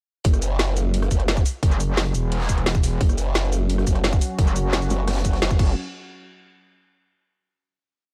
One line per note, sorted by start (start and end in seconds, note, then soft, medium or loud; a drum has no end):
0.24 1.10 F#1 loud
0.24 kick loud
0.24 closed hi-hat medium
0.24 closed hi-hat loud
0.33 cross-stick soft
0.33 closed hi-hat soft
0.33 cabasa soft
0.42 closed hi-hat medium
0.42 cabasa medium
0.59 snare loud
0.59 closed hi-hat loud
0.59 closed hi-hat medium
0.77 closed hi-hat medium
0.77 cabasa medium
0.94 closed hi-hat medium
1.02 cross-stick medium
1.02 closed hi-hat soft
1.11 1.44 F#1 loud
1.11 kick medium
1.11 closed hi-hat medium
1.11 cabasa medium
1.20 cross-stick soft
1.20 closed hi-hat soft
1.28 snare loud
1.28 closed hi-hat loud
1.28 closed hi-hat medium
1.37 kick loud
1.37 cabasa soft
1.46 closed hi-hat medium
1.46 open hi-hat medium
1.46 cabasa medium
1.63 2.13 F#1 loud
1.63 kick loud
1.63 closed hi-hat medium
1.71 cross-stick soft
1.71 closed hi-hat soft
1.71 cabasa soft
1.80 closed hi-hat medium
1.80 cabasa medium
1.97 snare loud
1.97 closed hi-hat loud
1.97 closed hi-hat medium
2.14 2.99 E1 loud
2.14 closed hi-hat medium
2.14 cabasa medium
2.32 closed hi-hat loud
2.32 open hi-hat medium
2.40 snare soft
2.49 kick medium
2.49 closed hi-hat medium
2.49 cabasa medium
2.58 cross-stick soft
2.58 closed hi-hat soft
2.66 snare loud
2.66 closed hi-hat medium
2.75 kick loud
2.75 cabasa soft
2.83 snare soft
2.83 closed hi-hat medium
2.83 open hi-hat medium
2.83 cabasa medium
3.01 3.86 F#1 medium
3.01 5.57 F#3 medium
3.01 5.57 C#4 medium
3.01 5.57 F#4 loud
3.01 kick loud
3.01 closed hi-hat medium
3.09 cross-stick soft
3.09 closed hi-hat soft
3.09 cabasa soft
3.18 closed hi-hat medium
3.18 cabasa medium
3.35 snare loud
3.35 closed hi-hat medium
3.52 closed hi-hat medium
3.52 cabasa medium
3.69 closed hi-hat medium
3.78 cross-stick soft
3.78 closed hi-hat soft
3.87 4.20 F#1 loud
3.87 kick medium
3.87 closed hi-hat medium
3.87 cabasa medium
3.96 cross-stick soft
3.96 closed hi-hat soft
4.04 snare loud
4.04 closed hi-hat medium
4.13 kick loud
4.13 cabasa soft
4.21 closed hi-hat medium
4.21 open hi-hat medium
4.21 cabasa medium
4.38 4.89 F#1 loud
4.38 kick loud
4.38 closed hi-hat medium
4.47 cross-stick soft
4.47 closed hi-hat soft
4.47 cabasa soft
4.56 closed hi-hat medium
4.56 cabasa medium
4.73 snare loud
4.73 closed hi-hat loud
4.73 closed hi-hat medium
4.82 closed hi-hat soft
4.82 cabasa soft
4.90 5.41 F#1 medium
4.90 closed hi-hat medium
4.90 cabasa medium
5.07 cross-stick medium
5.07 snare medium
5.07 closed hi-hat medium
5.11 snare medium
5.11 closed hi-hat medium
5.16 snare loud
5.16 closed hi-hat soft
5.16 closed hi-hat medium
5.24 kick medium
5.24 closed hi-hat medium
5.24 cabasa medium
5.33 cross-stick soft
5.33 snare soft
5.33 closed hi-hat soft
5.42 5.58 F#1 loud
5.42 snare loud
5.42 closed hi-hat medium
5.51 kick loud
5.51 cabasa soft
5.59 5.75 F#1 loud
5.59 5.75 F#3 medium
5.59 5.75 C#4 medium
5.59 5.75 F#4 medium
5.59 kick loud
5.59 crash medium